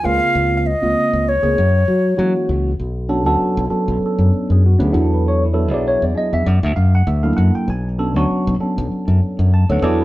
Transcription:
0.03 C#2 C#3 G#3 A#3 C4 F4 F5
0.35 C#2
0.57 F5
0.67 D#5
0.82 C#2 C#3 G#3 A#3 C4 F4
1.13 C#2
1.29 C#5
1.42 C#2 C#3 G#3 A#3 C4 G#4
1.58 F#2
1.88 F#3
2.17 E3 F#3 G#3 A#3 C#4 F#4
2.49 C#2
2.80 B1
3.09 F#3 B3 C#4 D4 A4
3.26 D2 F#3 B3 C#4 D4 A4
3.41 muted fingered electric bass stroke
3.57 B1
3.70 F#3 B3 C#4 D4 A4, muted fingered electric bass stroke
3.88 B1
4.02 A4, muted fingered electric bass stroke
4.19 F#2
4.33 muted fingered electric bass stroke
4.50 F#2 G#4
4.66 F#4
4.79 D2 F#3 B3 C#4 D4 B4
4.84 G#4
4.92 E2 F#3 B3 D4 E4 A4
5.14 B4
5.28 C#5
5.45 E4
5.53 F#3 B3 D4 E4 A4
5.71 B1 F#3 B3 D4 E4 G#4 D5
5.88 C#5
6.02 E2 D5
6.15 F#3 B3 D4 E4 G#4 D#5
6.33 E2 E5
6.46 F#2 D5
6.63 D2 E5
6.76 F#2 F5
6.95 F#5
7.07 D2 E5
7.23 F#3 A#3 D4 E4 A4 F5
7.37 F#2 F#5
7.55 G5, muted fingered electric bass stroke
7.68 B1 G#5
7.99 F#3 B3 C#4 D4 A4
8.16 D2 F#3 B3 C#4 D4 F#4
8.31 muted fingered electric bass stroke
8.47 B1
8.60 F#3 B3 C#4 D4 A4, muted fingered electric bass stroke
8.78 B1
8.92 muted fingered electric bass stroke
9.08 F#2
9.22 muted fingered electric bass stroke
9.39 F#2
9.54 A5
9.69 D2 F#3 B3 C#4 D4 A4 F#5
9.82 E2 F#3 B3 D4 E4 A4 D5
10.01 B4

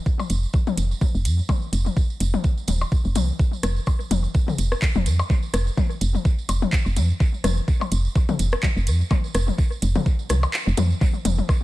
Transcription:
0.06 kick, tambourine
0.20 high tom, tambourine, percussion blips
0.30 F1, closed hi-hat, tambourine
0.43 tambourine
0.53 kick, tambourine
0.67 high tom, tambourine
0.77 F1, closed hi-hat, tambourine
0.91 tambourine
1.01 kick, high tom, tambourine
1.15 F1, tambourine
1.25 F2, closed hi-hat, tambourine
1.39 tambourine
1.49 kick, high tom, tambourine, percussion blips
1.62 tambourine
1.73 F1, closed hi-hat, tambourine
1.86 high tom, tambourine
1.97 kick, tambourine
2.10 tambourine
2.20 F1, closed hi-hat, tambourine
2.34 high tom, tambourine
2.44 kick, tambourine
2.58 tambourine
2.68 D#1, closed hi-hat, high tom, tambourine
2.81 tambourine, percussion blips
2.92 kick, tambourine
3.05 F1, tambourine
3.15 C2, closed hi-hat, high tom, tambourine
3.28 tambourine
3.39 kick, tambourine
3.53 tambourine
3.63 F1, cross-stick, closed hi-hat, high tom, tambourine
3.76 tambourine
3.86 kick, tambourine, percussion blips
4.00 tambourine
4.11 F1, closed hi-hat, high tom, tambourine
4.24 tambourine
4.34 kick, tambourine
4.48 mid tom, high tom, tambourine
4.58 F1, closed hi-hat, tambourine
4.72 cross-stick, tambourine
4.82 kick, clap, tambourine
4.95 F1, high tom, tambourine
5.06 F2, closed hi-hat, tambourine
5.19 tambourine, percussion blips
5.30 kick, high tom, tambourine
5.43 tambourine
5.54 F1, cross-stick, closed hi-hat, tambourine
5.67 tambourine
5.77 kick, high tom, tambourine
5.90 tambourine
6.01 F1, closed hi-hat, tambourine
6.15 high tom, tambourine
6.25 kick, tambourine
6.38 tambourine
6.49 F1, closed hi-hat, tambourine, percussion blips
6.62 high tom, tambourine
6.73 kick, clap, tambourine
6.86 F1, tambourine
6.96 F2, closed hi-hat, high tom, tambourine
7.10 tambourine
7.20 kick, tambourine
7.34 tambourine
7.44 F1, cross-stick, closed hi-hat, high tom, tambourine
7.57 tambourine
7.68 kick, tambourine
7.81 high tom, tambourine, percussion blips
7.91 F1, closed hi-hat, tambourine
8.05 tambourine
8.15 kick, tambourine
8.29 mid tom, high tom, tambourine
8.39 F1, closed hi-hat, tambourine
8.52 cross-stick, tambourine
8.62 kick, clap, high tom, tambourine
8.76 F1, tambourine
8.87 F2, closed hi-hat, tambourine
9.01 tambourine
9.10 kick, high tom, tambourine, percussion blips
9.24 tambourine
9.35 F1, cross-stick, closed hi-hat, tambourine
9.48 high tom, tambourine
9.58 kick, tambourine
9.72 tambourine
9.82 F1, closed hi-hat, tambourine
9.95 mid tom, high tom, tambourine
10.06 kick, tambourine
10.19 tambourine
10.29 C2, cross-stick, closed hi-hat, high tom, tambourine
10.43 tambourine, percussion blips
10.54 clap, tambourine
10.67 F1, tambourine
10.77 F2, closed hi-hat, high tom, tambourine
10.91 tambourine
11.01 kick, high tom, tambourine
11.14 tambourine
11.25 F1, closed hi-hat, high tom, tambourine
11.38 high tom, tambourine
11.49 kick, cross-stick, tambourine, percussion blips

